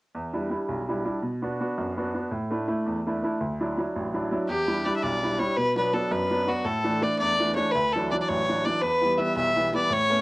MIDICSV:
0, 0, Header, 1, 3, 480
1, 0, Start_track
1, 0, Tempo, 362319
1, 171, Time_signature, 6, 3, 24, 8
1, 13533, End_track
2, 0, Start_track
2, 0, Title_t, "Fiddle"
2, 0, Program_c, 0, 110
2, 5939, Note_on_c, 0, 67, 75
2, 6431, Note_on_c, 0, 74, 80
2, 6451, Note_off_c, 0, 67, 0
2, 6566, Note_off_c, 0, 74, 0
2, 6574, Note_on_c, 0, 76, 59
2, 6657, Note_on_c, 0, 74, 72
2, 6677, Note_off_c, 0, 76, 0
2, 7139, Note_on_c, 0, 73, 78
2, 7159, Note_off_c, 0, 74, 0
2, 7374, Note_on_c, 0, 71, 91
2, 7394, Note_off_c, 0, 73, 0
2, 7636, Note_off_c, 0, 71, 0
2, 7645, Note_on_c, 0, 71, 73
2, 7864, Note_on_c, 0, 69, 69
2, 7884, Note_off_c, 0, 71, 0
2, 8103, Note_on_c, 0, 71, 78
2, 8123, Note_off_c, 0, 69, 0
2, 8589, Note_on_c, 0, 66, 78
2, 8609, Note_off_c, 0, 71, 0
2, 8809, Note_on_c, 0, 69, 84
2, 8829, Note_off_c, 0, 66, 0
2, 9310, Note_on_c, 0, 74, 77
2, 9330, Note_off_c, 0, 69, 0
2, 9509, Note_off_c, 0, 74, 0
2, 9517, Note_on_c, 0, 74, 91
2, 9980, Note_off_c, 0, 74, 0
2, 10005, Note_on_c, 0, 73, 82
2, 10219, Note_on_c, 0, 71, 99
2, 10239, Note_off_c, 0, 73, 0
2, 10501, Note_on_c, 0, 69, 82
2, 10521, Note_off_c, 0, 71, 0
2, 10737, Note_off_c, 0, 69, 0
2, 10745, Note_on_c, 0, 74, 76
2, 10807, Note_off_c, 0, 74, 0
2, 10882, Note_on_c, 0, 74, 60
2, 10971, Note_on_c, 0, 73, 88
2, 10991, Note_off_c, 0, 74, 0
2, 11463, Note_on_c, 0, 74, 82
2, 11483, Note_off_c, 0, 73, 0
2, 11681, Note_on_c, 0, 71, 100
2, 11701, Note_off_c, 0, 74, 0
2, 12159, Note_on_c, 0, 76, 81
2, 12179, Note_off_c, 0, 71, 0
2, 12399, Note_off_c, 0, 76, 0
2, 12408, Note_on_c, 0, 76, 86
2, 12863, Note_off_c, 0, 76, 0
2, 12915, Note_on_c, 0, 74, 88
2, 13154, Note_on_c, 0, 73, 108
2, 13174, Note_off_c, 0, 74, 0
2, 13533, Note_off_c, 0, 73, 0
2, 13533, End_track
3, 0, Start_track
3, 0, Title_t, "Upright piano"
3, 0, Program_c, 1, 0
3, 193, Note_on_c, 1, 40, 49
3, 444, Note_on_c, 1, 62, 39
3, 445, Note_on_c, 1, 55, 40
3, 451, Note_on_c, 1, 64, 42
3, 639, Note_off_c, 1, 55, 0
3, 652, Note_off_c, 1, 62, 0
3, 658, Note_off_c, 1, 40, 0
3, 658, Note_off_c, 1, 64, 0
3, 659, Note_on_c, 1, 55, 36
3, 672, Note_on_c, 1, 62, 33
3, 678, Note_on_c, 1, 64, 43
3, 909, Note_on_c, 1, 35, 45
3, 1052, Note_off_c, 1, 55, 0
3, 1061, Note_off_c, 1, 62, 0
3, 1064, Note_off_c, 1, 64, 0
3, 1175, Note_on_c, 1, 55, 43
3, 1180, Note_on_c, 1, 62, 35
3, 1187, Note_on_c, 1, 64, 44
3, 1373, Note_off_c, 1, 55, 0
3, 1376, Note_off_c, 1, 35, 0
3, 1377, Note_off_c, 1, 62, 0
3, 1381, Note_off_c, 1, 64, 0
3, 1392, Note_on_c, 1, 55, 35
3, 1396, Note_on_c, 1, 62, 39
3, 1401, Note_on_c, 1, 64, 44
3, 1573, Note_off_c, 1, 55, 0
3, 1575, Note_off_c, 1, 62, 0
3, 1578, Note_off_c, 1, 64, 0
3, 1622, Note_on_c, 1, 47, 51
3, 1885, Note_on_c, 1, 59, 41
3, 1890, Note_on_c, 1, 62, 43
3, 1903, Note_on_c, 1, 66, 40
3, 2093, Note_off_c, 1, 47, 0
3, 2107, Note_off_c, 1, 59, 0
3, 2109, Note_off_c, 1, 62, 0
3, 2118, Note_off_c, 1, 66, 0
3, 2127, Note_on_c, 1, 59, 44
3, 2129, Note_on_c, 1, 62, 36
3, 2138, Note_on_c, 1, 66, 52
3, 2357, Note_on_c, 1, 42, 48
3, 2510, Note_off_c, 1, 59, 0
3, 2511, Note_off_c, 1, 62, 0
3, 2517, Note_off_c, 1, 66, 0
3, 2608, Note_on_c, 1, 59, 46
3, 2618, Note_on_c, 1, 66, 48
3, 2619, Note_on_c, 1, 62, 38
3, 2821, Note_off_c, 1, 62, 0
3, 2822, Note_off_c, 1, 42, 0
3, 2826, Note_off_c, 1, 59, 0
3, 2832, Note_off_c, 1, 66, 0
3, 2841, Note_on_c, 1, 62, 35
3, 2846, Note_on_c, 1, 59, 45
3, 2852, Note_on_c, 1, 66, 42
3, 3019, Note_off_c, 1, 62, 0
3, 3022, Note_off_c, 1, 59, 0
3, 3026, Note_off_c, 1, 66, 0
3, 3061, Note_on_c, 1, 45, 51
3, 3317, Note_on_c, 1, 57, 45
3, 3327, Note_on_c, 1, 62, 36
3, 3333, Note_on_c, 1, 64, 42
3, 3529, Note_off_c, 1, 62, 0
3, 3531, Note_off_c, 1, 57, 0
3, 3534, Note_off_c, 1, 45, 0
3, 3535, Note_off_c, 1, 64, 0
3, 3549, Note_on_c, 1, 62, 34
3, 3551, Note_on_c, 1, 57, 44
3, 3554, Note_on_c, 1, 64, 51
3, 3788, Note_on_c, 1, 40, 52
3, 3940, Note_off_c, 1, 62, 0
3, 3941, Note_off_c, 1, 57, 0
3, 3943, Note_off_c, 1, 64, 0
3, 4060, Note_on_c, 1, 57, 39
3, 4068, Note_on_c, 1, 62, 35
3, 4070, Note_on_c, 1, 64, 46
3, 4258, Note_off_c, 1, 40, 0
3, 4261, Note_off_c, 1, 57, 0
3, 4272, Note_off_c, 1, 62, 0
3, 4274, Note_off_c, 1, 64, 0
3, 4281, Note_on_c, 1, 57, 37
3, 4292, Note_on_c, 1, 62, 39
3, 4294, Note_on_c, 1, 64, 49
3, 4460, Note_off_c, 1, 57, 0
3, 4466, Note_off_c, 1, 62, 0
3, 4467, Note_off_c, 1, 64, 0
3, 4508, Note_on_c, 1, 38, 52
3, 4776, Note_on_c, 1, 54, 45
3, 4776, Note_on_c, 1, 62, 44
3, 4782, Note_on_c, 1, 64, 47
3, 4978, Note_off_c, 1, 38, 0
3, 4981, Note_off_c, 1, 54, 0
3, 4988, Note_off_c, 1, 62, 0
3, 4993, Note_off_c, 1, 64, 0
3, 5001, Note_on_c, 1, 54, 42
3, 5008, Note_on_c, 1, 62, 39
3, 5013, Note_on_c, 1, 64, 45
3, 5240, Note_on_c, 1, 33, 50
3, 5387, Note_off_c, 1, 54, 0
3, 5392, Note_off_c, 1, 62, 0
3, 5395, Note_off_c, 1, 64, 0
3, 5477, Note_on_c, 1, 54, 43
3, 5489, Note_on_c, 1, 62, 38
3, 5490, Note_on_c, 1, 64, 49
3, 5693, Note_off_c, 1, 54, 0
3, 5705, Note_off_c, 1, 33, 0
3, 5707, Note_off_c, 1, 64, 0
3, 5708, Note_off_c, 1, 62, 0
3, 5713, Note_on_c, 1, 54, 49
3, 5727, Note_on_c, 1, 64, 50
3, 5728, Note_on_c, 1, 62, 40
3, 5895, Note_off_c, 1, 54, 0
3, 5903, Note_off_c, 1, 64, 0
3, 5904, Note_off_c, 1, 62, 0
3, 5942, Note_on_c, 1, 40, 55
3, 6185, Note_on_c, 1, 55, 44
3, 6201, Note_on_c, 1, 62, 39
3, 6202, Note_on_c, 1, 64, 44
3, 6415, Note_off_c, 1, 40, 0
3, 6415, Note_off_c, 1, 55, 0
3, 6419, Note_off_c, 1, 62, 0
3, 6428, Note_off_c, 1, 64, 0
3, 6434, Note_on_c, 1, 55, 38
3, 6439, Note_on_c, 1, 62, 41
3, 6448, Note_on_c, 1, 64, 49
3, 6667, Note_on_c, 1, 35, 53
3, 6824, Note_off_c, 1, 55, 0
3, 6826, Note_off_c, 1, 62, 0
3, 6831, Note_off_c, 1, 64, 0
3, 6923, Note_on_c, 1, 55, 39
3, 6934, Note_on_c, 1, 62, 37
3, 6937, Note_on_c, 1, 64, 47
3, 7129, Note_off_c, 1, 62, 0
3, 7131, Note_off_c, 1, 55, 0
3, 7138, Note_off_c, 1, 35, 0
3, 7145, Note_off_c, 1, 64, 0
3, 7149, Note_on_c, 1, 62, 41
3, 7150, Note_on_c, 1, 55, 46
3, 7164, Note_on_c, 1, 64, 44
3, 7332, Note_off_c, 1, 62, 0
3, 7333, Note_off_c, 1, 55, 0
3, 7342, Note_off_c, 1, 64, 0
3, 7382, Note_on_c, 1, 47, 51
3, 7627, Note_on_c, 1, 54, 44
3, 7634, Note_on_c, 1, 59, 43
3, 7640, Note_on_c, 1, 62, 44
3, 7835, Note_off_c, 1, 54, 0
3, 7848, Note_off_c, 1, 59, 0
3, 7848, Note_off_c, 1, 62, 0
3, 7855, Note_off_c, 1, 47, 0
3, 7855, Note_on_c, 1, 54, 43
3, 7867, Note_on_c, 1, 59, 36
3, 7868, Note_on_c, 1, 62, 51
3, 8095, Note_on_c, 1, 42, 56
3, 8252, Note_off_c, 1, 54, 0
3, 8259, Note_off_c, 1, 59, 0
3, 8259, Note_off_c, 1, 62, 0
3, 8348, Note_on_c, 1, 54, 43
3, 8356, Note_on_c, 1, 59, 38
3, 8360, Note_on_c, 1, 62, 49
3, 8548, Note_off_c, 1, 54, 0
3, 8554, Note_off_c, 1, 62, 0
3, 8556, Note_off_c, 1, 59, 0
3, 8568, Note_on_c, 1, 54, 44
3, 8571, Note_off_c, 1, 42, 0
3, 8574, Note_on_c, 1, 62, 45
3, 8576, Note_on_c, 1, 59, 42
3, 8759, Note_off_c, 1, 54, 0
3, 8763, Note_off_c, 1, 62, 0
3, 8764, Note_off_c, 1, 59, 0
3, 8802, Note_on_c, 1, 45, 53
3, 9062, Note_on_c, 1, 57, 42
3, 9064, Note_on_c, 1, 52, 46
3, 9070, Note_on_c, 1, 62, 48
3, 9271, Note_off_c, 1, 52, 0
3, 9275, Note_off_c, 1, 57, 0
3, 9280, Note_off_c, 1, 62, 0
3, 9283, Note_off_c, 1, 45, 0
3, 9291, Note_on_c, 1, 52, 40
3, 9295, Note_on_c, 1, 57, 37
3, 9300, Note_on_c, 1, 62, 49
3, 9542, Note_on_c, 1, 40, 57
3, 9688, Note_off_c, 1, 52, 0
3, 9691, Note_off_c, 1, 57, 0
3, 9693, Note_off_c, 1, 62, 0
3, 9802, Note_on_c, 1, 52, 45
3, 9803, Note_on_c, 1, 57, 38
3, 9808, Note_on_c, 1, 62, 50
3, 9998, Note_off_c, 1, 52, 0
3, 10002, Note_off_c, 1, 57, 0
3, 10005, Note_off_c, 1, 62, 0
3, 10013, Note_off_c, 1, 40, 0
3, 10018, Note_on_c, 1, 52, 45
3, 10021, Note_on_c, 1, 57, 44
3, 10025, Note_on_c, 1, 62, 51
3, 10204, Note_off_c, 1, 52, 0
3, 10206, Note_off_c, 1, 57, 0
3, 10209, Note_off_c, 1, 62, 0
3, 10265, Note_on_c, 1, 38, 56
3, 10533, Note_on_c, 1, 54, 44
3, 10535, Note_on_c, 1, 52, 43
3, 10546, Note_on_c, 1, 62, 47
3, 10734, Note_off_c, 1, 38, 0
3, 10734, Note_off_c, 1, 52, 0
3, 10741, Note_off_c, 1, 54, 0
3, 10745, Note_off_c, 1, 62, 0
3, 10753, Note_on_c, 1, 52, 41
3, 10761, Note_on_c, 1, 54, 40
3, 10765, Note_on_c, 1, 62, 51
3, 10987, Note_on_c, 1, 33, 59
3, 11140, Note_off_c, 1, 52, 0
3, 11145, Note_off_c, 1, 54, 0
3, 11147, Note_off_c, 1, 62, 0
3, 11246, Note_on_c, 1, 52, 40
3, 11249, Note_on_c, 1, 54, 36
3, 11252, Note_on_c, 1, 62, 52
3, 11443, Note_off_c, 1, 52, 0
3, 11447, Note_off_c, 1, 54, 0
3, 11454, Note_off_c, 1, 33, 0
3, 11461, Note_off_c, 1, 62, 0
3, 11463, Note_on_c, 1, 52, 39
3, 11467, Note_on_c, 1, 54, 41
3, 11481, Note_on_c, 1, 62, 43
3, 11646, Note_off_c, 1, 52, 0
3, 11648, Note_off_c, 1, 54, 0
3, 11657, Note_off_c, 1, 62, 0
3, 11683, Note_on_c, 1, 40, 46
3, 11943, Note_on_c, 1, 52, 40
3, 11950, Note_on_c, 1, 55, 39
3, 11955, Note_on_c, 1, 59, 41
3, 12143, Note_off_c, 1, 52, 0
3, 12146, Note_off_c, 1, 55, 0
3, 12154, Note_off_c, 1, 59, 0
3, 12161, Note_off_c, 1, 40, 0
3, 12163, Note_on_c, 1, 52, 43
3, 12166, Note_on_c, 1, 55, 37
3, 12174, Note_on_c, 1, 59, 53
3, 12401, Note_on_c, 1, 35, 46
3, 12560, Note_off_c, 1, 52, 0
3, 12562, Note_off_c, 1, 55, 0
3, 12567, Note_off_c, 1, 59, 0
3, 12665, Note_on_c, 1, 52, 46
3, 12675, Note_on_c, 1, 59, 45
3, 12677, Note_on_c, 1, 55, 37
3, 12869, Note_off_c, 1, 52, 0
3, 12875, Note_off_c, 1, 55, 0
3, 12879, Note_off_c, 1, 35, 0
3, 12883, Note_off_c, 1, 59, 0
3, 12889, Note_on_c, 1, 52, 43
3, 12895, Note_on_c, 1, 55, 41
3, 12903, Note_on_c, 1, 59, 47
3, 13076, Note_off_c, 1, 52, 0
3, 13080, Note_off_c, 1, 55, 0
3, 13085, Note_off_c, 1, 59, 0
3, 13111, Note_on_c, 1, 45, 53
3, 13376, Note_on_c, 1, 57, 43
3, 13379, Note_on_c, 1, 59, 36
3, 13389, Note_on_c, 1, 61, 54
3, 13533, Note_off_c, 1, 45, 0
3, 13533, Note_off_c, 1, 57, 0
3, 13533, Note_off_c, 1, 59, 0
3, 13533, Note_off_c, 1, 61, 0
3, 13533, End_track
0, 0, End_of_file